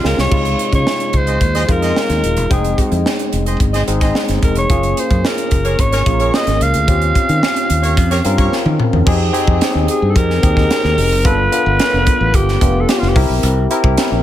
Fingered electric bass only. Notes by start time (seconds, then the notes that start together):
0.04 C#2
0.18 C2
0.32 C#2
0.73 C#3
1.14 C#2
1.41 D#2
1.69 F2
2.10 D#2
2.24 D#1
2.37 E1
2.51 F1
2.92 F2
3.33 F1
3.60 G1
3.88 G#1
4.29 G1
4.43 E1
4.56 F1
4.70 F#1
5.11 F#2
5.52 F#1
5.79 G#1
6.06 A#1
6.47 G#1
6.61 C#2
6.75 D2
6.88 D#2
7.29 D#3
7.70 D#2
7.97 F2
8.25 G2
8.66 D#3
8.93 E2
9.07 F2
9.47 F2
9.75 D#2
10.02 G2
10.16 F2
10.43 D#2
10.84 D#2
10.98 F1
11.12 F#1
11.25 G1
11.66 G1
11.93 F1
12.21 A1
12.34 G1
12.62 F1
13.02 F1
13.16 C2
13.30 B1
13.43 C2
13.84 C2
14.12 A#1